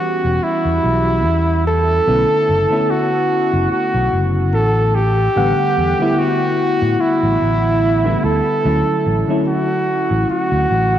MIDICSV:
0, 0, Header, 1, 5, 480
1, 0, Start_track
1, 0, Tempo, 821918
1, 1213, Time_signature, 4, 2, 24, 8
1, 6418, End_track
2, 0, Start_track
2, 0, Title_t, "Flugelhorn"
2, 0, Program_c, 0, 56
2, 0, Note_on_c, 0, 66, 108
2, 254, Note_on_c, 0, 64, 103
2, 263, Note_off_c, 0, 66, 0
2, 972, Note_off_c, 0, 64, 0
2, 975, Note_on_c, 0, 69, 113
2, 1695, Note_on_c, 0, 66, 106
2, 1703, Note_off_c, 0, 69, 0
2, 2170, Note_off_c, 0, 66, 0
2, 2173, Note_on_c, 0, 66, 97
2, 2480, Note_off_c, 0, 66, 0
2, 2652, Note_on_c, 0, 69, 100
2, 2892, Note_on_c, 0, 67, 102
2, 2901, Note_off_c, 0, 69, 0
2, 3614, Note_on_c, 0, 66, 109
2, 3623, Note_off_c, 0, 67, 0
2, 4091, Note_on_c, 0, 64, 94
2, 4100, Note_off_c, 0, 66, 0
2, 4812, Note_on_c, 0, 69, 104
2, 4820, Note_off_c, 0, 64, 0
2, 5382, Note_off_c, 0, 69, 0
2, 5531, Note_on_c, 0, 66, 101
2, 5989, Note_off_c, 0, 66, 0
2, 6014, Note_on_c, 0, 66, 97
2, 6418, Note_off_c, 0, 66, 0
2, 6418, End_track
3, 0, Start_track
3, 0, Title_t, "FM electric piano"
3, 0, Program_c, 1, 5
3, 0, Control_c, 1, 64, 127
3, 0, Note_on_c, 1, 52, 91
3, 0, Note_on_c, 1, 55, 84
3, 0, Note_on_c, 1, 59, 84
3, 0, Note_on_c, 1, 61, 85
3, 0, Note_on_c, 1, 66, 102
3, 0, Note_on_c, 1, 67, 102
3, 1181, Note_off_c, 1, 52, 0
3, 1183, Note_off_c, 1, 55, 0
3, 1185, Note_off_c, 1, 59, 0
3, 1188, Note_off_c, 1, 61, 0
3, 1190, Note_off_c, 1, 66, 0
3, 1207, Note_on_c, 1, 50, 83
3, 1209, Note_on_c, 1, 57, 72
3, 1211, Note_on_c, 1, 59, 75
3, 1214, Note_on_c, 1, 61, 72
3, 1216, Note_on_c, 1, 64, 89
3, 1221, Control_c, 1, 64, 0
3, 1222, Note_off_c, 1, 67, 0
3, 1329, Control_c, 1, 64, 127
3, 1549, Note_off_c, 1, 50, 0
3, 1550, Note_off_c, 1, 57, 0
3, 1551, Note_off_c, 1, 59, 0
3, 1553, Note_off_c, 1, 61, 0
3, 1554, Note_off_c, 1, 64, 0
3, 1574, Note_on_c, 1, 50, 85
3, 1579, Note_on_c, 1, 57, 82
3, 1583, Note_on_c, 1, 59, 77
3, 1587, Note_on_c, 1, 61, 80
3, 1591, Note_on_c, 1, 64, 94
3, 2875, Note_off_c, 1, 50, 0
3, 2877, Note_off_c, 1, 57, 0
3, 2879, Note_off_c, 1, 59, 0
3, 2881, Note_off_c, 1, 61, 0
3, 2884, Note_off_c, 1, 64, 0
3, 2901, Control_c, 1, 64, 0
3, 3011, Control_c, 1, 64, 127
3, 3129, Note_on_c, 1, 50, 94
3, 3131, Note_on_c, 1, 55, 86
3, 3133, Note_on_c, 1, 57, 86
3, 3136, Note_on_c, 1, 59, 84
3, 3137, Note_on_c, 1, 78, 108
3, 3470, Note_off_c, 1, 50, 0
3, 3471, Note_off_c, 1, 55, 0
3, 3472, Note_off_c, 1, 57, 0
3, 3474, Note_off_c, 1, 59, 0
3, 3474, Note_off_c, 1, 78, 0
3, 3495, Note_on_c, 1, 50, 95
3, 3499, Note_on_c, 1, 55, 82
3, 3504, Note_on_c, 1, 57, 81
3, 3508, Note_on_c, 1, 59, 85
3, 3513, Note_on_c, 1, 64, 104
3, 4673, Note_off_c, 1, 50, 0
3, 4675, Note_off_c, 1, 55, 0
3, 4678, Note_off_c, 1, 57, 0
3, 4680, Note_off_c, 1, 59, 0
3, 4682, Note_off_c, 1, 64, 0
3, 4699, Note_on_c, 1, 50, 83
3, 4700, Note_on_c, 1, 55, 75
3, 4703, Note_on_c, 1, 57, 78
3, 4704, Note_on_c, 1, 59, 80
3, 4707, Note_on_c, 1, 64, 94
3, 5024, Note_off_c, 1, 50, 0
3, 5025, Note_off_c, 1, 55, 0
3, 5026, Note_off_c, 1, 57, 0
3, 5027, Note_off_c, 1, 59, 0
3, 5028, Note_off_c, 1, 64, 0
3, 5047, Note_on_c, 1, 50, 81
3, 5049, Note_on_c, 1, 54, 75
3, 5052, Note_on_c, 1, 57, 75
3, 5055, Note_on_c, 1, 61, 72
3, 5056, Note_on_c, 1, 64, 89
3, 5060, Control_c, 1, 64, 0
3, 5163, Control_c, 1, 64, 127
3, 5389, Note_off_c, 1, 50, 0
3, 5390, Note_off_c, 1, 54, 0
3, 5392, Note_off_c, 1, 57, 0
3, 5393, Note_off_c, 1, 61, 0
3, 5394, Note_off_c, 1, 64, 0
3, 5415, Note_on_c, 1, 50, 83
3, 5420, Note_on_c, 1, 54, 78
3, 5424, Note_on_c, 1, 57, 75
3, 5428, Note_on_c, 1, 61, 78
3, 5433, Note_on_c, 1, 64, 95
3, 6418, Note_off_c, 1, 50, 0
3, 6418, Note_off_c, 1, 54, 0
3, 6418, Note_off_c, 1, 57, 0
3, 6418, Note_off_c, 1, 61, 0
3, 6418, Note_off_c, 1, 64, 0
3, 6418, End_track
4, 0, Start_track
4, 0, Title_t, "Fingered electric bass"
4, 0, Program_c, 2, 33
4, 144, Note_on_c, 2, 28, 92
4, 220, Note_off_c, 2, 28, 0
4, 382, Note_on_c, 2, 40, 80
4, 459, Note_off_c, 2, 40, 0
4, 492, Note_on_c, 2, 35, 94
4, 732, Note_off_c, 2, 35, 0
4, 732, Note_on_c, 2, 40, 96
4, 1159, Note_off_c, 2, 40, 0
4, 1212, Note_on_c, 2, 35, 96
4, 1303, Note_off_c, 2, 35, 0
4, 1453, Note_on_c, 2, 30, 83
4, 1544, Note_off_c, 2, 30, 0
4, 2064, Note_on_c, 2, 30, 94
4, 2140, Note_off_c, 2, 30, 0
4, 2303, Note_on_c, 2, 35, 82
4, 2379, Note_off_c, 2, 35, 0
4, 2413, Note_on_c, 2, 30, 95
4, 2652, Note_off_c, 2, 30, 0
4, 2652, Note_on_c, 2, 33, 102
4, 3079, Note_off_c, 2, 33, 0
4, 3133, Note_on_c, 2, 33, 97
4, 3224, Note_off_c, 2, 33, 0
4, 3372, Note_on_c, 2, 40, 84
4, 3463, Note_off_c, 2, 40, 0
4, 3983, Note_on_c, 2, 45, 98
4, 4059, Note_off_c, 2, 45, 0
4, 4223, Note_on_c, 2, 33, 79
4, 4299, Note_off_c, 2, 33, 0
4, 4333, Note_on_c, 2, 33, 81
4, 4760, Note_off_c, 2, 33, 0
4, 4812, Note_on_c, 2, 38, 90
4, 4903, Note_off_c, 2, 38, 0
4, 5052, Note_on_c, 2, 38, 98
4, 5143, Note_off_c, 2, 38, 0
4, 5292, Note_on_c, 2, 33, 86
4, 5383, Note_off_c, 2, 33, 0
4, 5903, Note_on_c, 2, 33, 97
4, 5979, Note_off_c, 2, 33, 0
4, 6142, Note_on_c, 2, 38, 81
4, 6219, Note_off_c, 2, 38, 0
4, 6251, Note_on_c, 2, 33, 95
4, 6418, Note_off_c, 2, 33, 0
4, 6418, End_track
5, 0, Start_track
5, 0, Title_t, "Muted fingered electric bass strokes"
5, 2173, Note_on_c, 9, 29, 43
5, 2232, Note_off_c, 9, 29, 0
5, 6013, Note_on_c, 9, 29, 41
5, 6072, Note_off_c, 9, 29, 0
5, 6418, End_track
0, 0, End_of_file